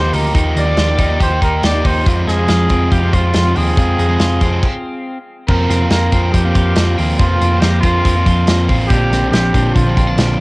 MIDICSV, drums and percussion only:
0, 0, Header, 1, 2, 480
1, 0, Start_track
1, 0, Tempo, 427350
1, 396, Time_signature, 4, 2, 24, 8
1, 11685, End_track
2, 0, Start_track
2, 0, Title_t, "Drums"
2, 149, Note_on_c, 9, 46, 69
2, 262, Note_off_c, 9, 46, 0
2, 391, Note_on_c, 9, 36, 100
2, 393, Note_on_c, 9, 42, 83
2, 503, Note_off_c, 9, 36, 0
2, 505, Note_off_c, 9, 42, 0
2, 636, Note_on_c, 9, 42, 59
2, 749, Note_off_c, 9, 42, 0
2, 866, Note_on_c, 9, 42, 77
2, 871, Note_on_c, 9, 38, 96
2, 978, Note_off_c, 9, 42, 0
2, 983, Note_off_c, 9, 38, 0
2, 1106, Note_on_c, 9, 42, 60
2, 1109, Note_on_c, 9, 36, 74
2, 1218, Note_off_c, 9, 42, 0
2, 1221, Note_off_c, 9, 36, 0
2, 1353, Note_on_c, 9, 36, 73
2, 1356, Note_on_c, 9, 42, 81
2, 1465, Note_off_c, 9, 36, 0
2, 1468, Note_off_c, 9, 42, 0
2, 1595, Note_on_c, 9, 36, 76
2, 1600, Note_on_c, 9, 42, 60
2, 1707, Note_off_c, 9, 36, 0
2, 1712, Note_off_c, 9, 42, 0
2, 1833, Note_on_c, 9, 42, 93
2, 1842, Note_on_c, 9, 38, 108
2, 1945, Note_off_c, 9, 42, 0
2, 1954, Note_off_c, 9, 38, 0
2, 2077, Note_on_c, 9, 36, 80
2, 2078, Note_on_c, 9, 46, 68
2, 2189, Note_off_c, 9, 36, 0
2, 2191, Note_off_c, 9, 46, 0
2, 2318, Note_on_c, 9, 36, 107
2, 2318, Note_on_c, 9, 42, 89
2, 2430, Note_off_c, 9, 36, 0
2, 2430, Note_off_c, 9, 42, 0
2, 2565, Note_on_c, 9, 38, 32
2, 2571, Note_on_c, 9, 42, 55
2, 2678, Note_off_c, 9, 38, 0
2, 2683, Note_off_c, 9, 42, 0
2, 2789, Note_on_c, 9, 42, 78
2, 2793, Note_on_c, 9, 38, 97
2, 2901, Note_off_c, 9, 42, 0
2, 2906, Note_off_c, 9, 38, 0
2, 3027, Note_on_c, 9, 42, 62
2, 3034, Note_on_c, 9, 36, 74
2, 3140, Note_off_c, 9, 42, 0
2, 3146, Note_off_c, 9, 36, 0
2, 3276, Note_on_c, 9, 36, 77
2, 3277, Note_on_c, 9, 42, 73
2, 3389, Note_off_c, 9, 36, 0
2, 3389, Note_off_c, 9, 42, 0
2, 3518, Note_on_c, 9, 36, 73
2, 3519, Note_on_c, 9, 42, 63
2, 3631, Note_off_c, 9, 36, 0
2, 3632, Note_off_c, 9, 42, 0
2, 3748, Note_on_c, 9, 42, 84
2, 3757, Note_on_c, 9, 38, 102
2, 3860, Note_off_c, 9, 42, 0
2, 3869, Note_off_c, 9, 38, 0
2, 3995, Note_on_c, 9, 46, 72
2, 4107, Note_off_c, 9, 46, 0
2, 4237, Note_on_c, 9, 42, 82
2, 4238, Note_on_c, 9, 36, 108
2, 4349, Note_off_c, 9, 42, 0
2, 4351, Note_off_c, 9, 36, 0
2, 4486, Note_on_c, 9, 42, 59
2, 4599, Note_off_c, 9, 42, 0
2, 4713, Note_on_c, 9, 42, 77
2, 4717, Note_on_c, 9, 38, 94
2, 4825, Note_off_c, 9, 42, 0
2, 4830, Note_off_c, 9, 38, 0
2, 4952, Note_on_c, 9, 42, 59
2, 4956, Note_on_c, 9, 36, 75
2, 5065, Note_off_c, 9, 42, 0
2, 5068, Note_off_c, 9, 36, 0
2, 5199, Note_on_c, 9, 36, 90
2, 5199, Note_on_c, 9, 49, 75
2, 5312, Note_off_c, 9, 36, 0
2, 5312, Note_off_c, 9, 49, 0
2, 6159, Note_on_c, 9, 49, 83
2, 6161, Note_on_c, 9, 36, 109
2, 6271, Note_off_c, 9, 49, 0
2, 6273, Note_off_c, 9, 36, 0
2, 6403, Note_on_c, 9, 38, 35
2, 6408, Note_on_c, 9, 42, 61
2, 6515, Note_off_c, 9, 38, 0
2, 6521, Note_off_c, 9, 42, 0
2, 6632, Note_on_c, 9, 42, 76
2, 6636, Note_on_c, 9, 38, 100
2, 6744, Note_off_c, 9, 42, 0
2, 6749, Note_off_c, 9, 38, 0
2, 6876, Note_on_c, 9, 42, 65
2, 6879, Note_on_c, 9, 36, 77
2, 6988, Note_off_c, 9, 42, 0
2, 6991, Note_off_c, 9, 36, 0
2, 7121, Note_on_c, 9, 36, 73
2, 7122, Note_on_c, 9, 42, 83
2, 7233, Note_off_c, 9, 36, 0
2, 7235, Note_off_c, 9, 42, 0
2, 7358, Note_on_c, 9, 42, 67
2, 7361, Note_on_c, 9, 36, 79
2, 7471, Note_off_c, 9, 42, 0
2, 7474, Note_off_c, 9, 36, 0
2, 7591, Note_on_c, 9, 42, 96
2, 7600, Note_on_c, 9, 38, 109
2, 7703, Note_off_c, 9, 42, 0
2, 7712, Note_off_c, 9, 38, 0
2, 7845, Note_on_c, 9, 46, 71
2, 7958, Note_off_c, 9, 46, 0
2, 8080, Note_on_c, 9, 42, 90
2, 8082, Note_on_c, 9, 36, 111
2, 8192, Note_off_c, 9, 42, 0
2, 8195, Note_off_c, 9, 36, 0
2, 8330, Note_on_c, 9, 42, 57
2, 8442, Note_off_c, 9, 42, 0
2, 8557, Note_on_c, 9, 42, 81
2, 8562, Note_on_c, 9, 38, 102
2, 8669, Note_off_c, 9, 42, 0
2, 8674, Note_off_c, 9, 38, 0
2, 8796, Note_on_c, 9, 42, 64
2, 8798, Note_on_c, 9, 36, 81
2, 8909, Note_off_c, 9, 42, 0
2, 8911, Note_off_c, 9, 36, 0
2, 9042, Note_on_c, 9, 36, 77
2, 9051, Note_on_c, 9, 42, 83
2, 9155, Note_off_c, 9, 36, 0
2, 9163, Note_off_c, 9, 42, 0
2, 9281, Note_on_c, 9, 36, 81
2, 9286, Note_on_c, 9, 42, 66
2, 9393, Note_off_c, 9, 36, 0
2, 9398, Note_off_c, 9, 42, 0
2, 9516, Note_on_c, 9, 42, 94
2, 9525, Note_on_c, 9, 38, 110
2, 9628, Note_off_c, 9, 42, 0
2, 9637, Note_off_c, 9, 38, 0
2, 9762, Note_on_c, 9, 36, 82
2, 9763, Note_on_c, 9, 46, 73
2, 9875, Note_off_c, 9, 36, 0
2, 9876, Note_off_c, 9, 46, 0
2, 9996, Note_on_c, 9, 42, 97
2, 9999, Note_on_c, 9, 36, 110
2, 10108, Note_off_c, 9, 42, 0
2, 10112, Note_off_c, 9, 36, 0
2, 10246, Note_on_c, 9, 38, 35
2, 10251, Note_on_c, 9, 42, 55
2, 10358, Note_off_c, 9, 38, 0
2, 10364, Note_off_c, 9, 42, 0
2, 10483, Note_on_c, 9, 42, 82
2, 10487, Note_on_c, 9, 38, 99
2, 10595, Note_off_c, 9, 42, 0
2, 10600, Note_off_c, 9, 38, 0
2, 10718, Note_on_c, 9, 36, 78
2, 10723, Note_on_c, 9, 42, 63
2, 10830, Note_off_c, 9, 36, 0
2, 10835, Note_off_c, 9, 42, 0
2, 10959, Note_on_c, 9, 36, 83
2, 10965, Note_on_c, 9, 42, 77
2, 11071, Note_off_c, 9, 36, 0
2, 11078, Note_off_c, 9, 42, 0
2, 11199, Note_on_c, 9, 36, 78
2, 11203, Note_on_c, 9, 42, 71
2, 11311, Note_off_c, 9, 36, 0
2, 11315, Note_off_c, 9, 42, 0
2, 11433, Note_on_c, 9, 42, 96
2, 11442, Note_on_c, 9, 38, 111
2, 11545, Note_off_c, 9, 42, 0
2, 11555, Note_off_c, 9, 38, 0
2, 11685, End_track
0, 0, End_of_file